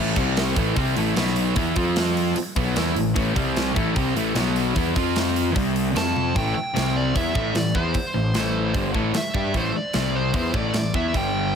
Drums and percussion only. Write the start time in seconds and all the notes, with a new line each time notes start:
0.16 kick, open hi-hat
0.37 snare, open hi-hat
0.56 kick, open hi-hat
0.76 kick, open hi-hat
0.97 open hi-hat
1.17 snare, open hi-hat
1.27 snare
1.36 open hi-hat
1.56 kick, open hi-hat
1.76 kick, open hi-hat
1.96 snare, open hi-hat
2.17 open hi-hat
2.36 open hi-hat
2.56 kick, open hi-hat
2.76 snare, open hi-hat
2.96 open hi-hat
3.16 kick, open hi-hat
3.36 kick, open hi-hat
3.57 snare, open hi-hat
3.76 kick, open hi-hat
3.96 kick, open hi-hat
4.17 open hi-hat
4.36 snare, open hi-hat
4.56 open hi-hat
4.76 kick, open hi-hat
4.96 kick, open hi-hat
5.16 snare, open hi-hat
5.36 open hi-hat
5.56 kick, open hi-hat
5.76 open hi-hat
5.96 snare, open hi-hat
6.16 high tom
6.36 kick, open hi-hat
6.76 snare, open hi-hat
7.16 kick, open hi-hat
7.35 kick
7.55 snare, open hi-hat
7.75 kick
7.94 kick, open hi-hat
8.34 snare, open hi-hat
8.74 kick, open hi-hat
8.94 kick
9.14 snare, open hi-hat
9.34 kick
9.54 kick, open hi-hat
9.93 snare, open hi-hat
10.34 kick, open hi-hat
10.54 kick
10.74 snare, open hi-hat
10.94 kick
11.14 kick, open hi-hat